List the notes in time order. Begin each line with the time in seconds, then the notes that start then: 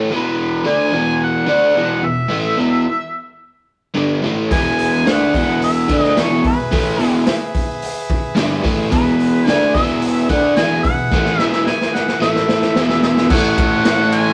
Already playing: A3
0.10 E2 B2 E3
0.16 B4
0.64 D3 A3 D4
0.70 G#5
0.91 E2 B2 E3
1.24 F#5
1.46 D3 A3 D4
1.75 E2 B2 E3
2.03 E2 B2 E5
2.28 A2 E3 A3
2.57 E2 B2 E3
3.94 G2 D3 G3
4.22 A2 E3 A3
4.49 E2 B2 G#4 B4 E5 G#5, kick, open hi-hat
4.53 E3
4.79 open hi-hat
5.05 D3 A3 D4 F#5, snare, open hi-hat
5.34 E2 B2 E3, kick, open hi-hat
5.62 E5, open hi-hat
5.88 D3 A3 D4, kick, open hi-hat
6.01 D#5, snare
6.16 E2 B2 E3 C#5, snare, open hi-hat
6.44 E2 B2 B4, kick, open hi-hat
6.72 A2 E3 A3, kick, open hi-hat
6.98 E2 B2 E3, open hi-hat
7.03 A4
7.27 snare, open hi-hat
7.55 kick, open hi-hat
7.82 open hi-hat
8.09 kick, open hi-hat
8.35 G2 D3 G3, snare, open hi-hat
8.63 A2 E3 A3, kick, open hi-hat
8.90 E2 B2 E3 G#4 B4 E5, kick, open hi-hat
9.20 open hi-hat
9.46 D3 A3 D4 G#5, snare, open hi-hat
9.74 E2 B2 E3 E5, kick, open hi-hat
10.02 open hi-hat
10.29 D3 A3 D4 F#5, kick, open hi-hat
10.56 E2 B2 E3 G#5, snare, open hi-hat
10.83 E2 B2 F#5, kick, open hi-hat
11.11 A2 E3 A3, kick, snare
11.25 snare
11.39 E2 B2 E3 E5, snare
11.53 snare
11.67 G#5, snare
11.81 snare
11.95 F#5, snare
12.08 snare
12.21 A2 E3 A3 E4 A4 E5, snare
12.36 snare
12.49 snare
12.62 snare
12.74 E2 B2 E3 G#4 B4 E5, snare
12.89 snare
13.03 E5, snare
13.17 snare
13.29 A2 A4 C#5 E5 F#5, kick, crash
13.33 E3 A3
13.58 kick, ride
13.85 snare, ride
14.12 G#5, ride